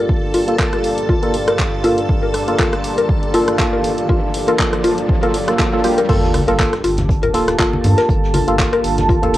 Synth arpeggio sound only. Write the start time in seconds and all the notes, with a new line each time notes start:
0.34 F4
0.73 A#4
1.09 F4
1.48 A#4
1.84 F4
2.23 A#4
2.59 F4
2.98 A#4
3.34 F4
3.73 A#4
4.09 F4
4.48 A#4
4.84 F4
5.23 A#4
5.59 F4
5.98 A#4
6.09 F4
6.48 A#4
6.84 F4
7.23 A#4
7.59 F4
7.98 A#4
8.34 F4
8.73 A#4
9.09 F4